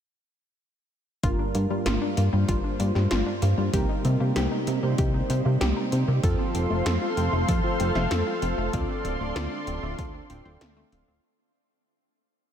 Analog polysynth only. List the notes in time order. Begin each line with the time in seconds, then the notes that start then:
1.23 G2 G3 A#3 D4 F4 A#4
2.33 G2 G3 A#3 D4 F4 C5
3.74 C3 G3 A#3 C4 D#4 A#4
4.83 C3 G3 A#3 C4 D#4 C5
6.23 F3 C4 F4 A4
7.33 F3 C4 F4 C5
8.74 D3 C4 D4 F4 A4 D5
9.83 D3 C4 D4 F4 A4 F5
10.30 D3 C4 D4 F4 A4 G5
10.92 D3 C4 D4 F4 A4 F5